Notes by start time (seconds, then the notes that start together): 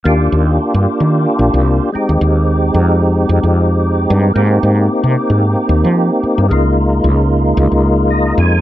0.04 D#2 A#3 D4 F4 G4
0.32 D#2
0.74 G2
1.00 D#3
1.39 A#1
1.54 C2
1.92 G#3 C4 D#4 G4, muted fretless electric bass stroke
2.09 D#2
2.21 D#2
2.74 F2
3.29 F2
3.43 F2
4.10 G2
4.34 G#2 A#3 C4 D#4 G4
4.63 G#2
5.04 C3
5.30 G#2
5.69 D#2
5.84 F3
6.23 muted fretless electric bass stroke
6.38 G2
6.49 C#2 G#3 A#3 D#4 F4
7.04 C#2
7.57 C#2
7.72 C#2
8.10 D#5
8.38 F2 G#5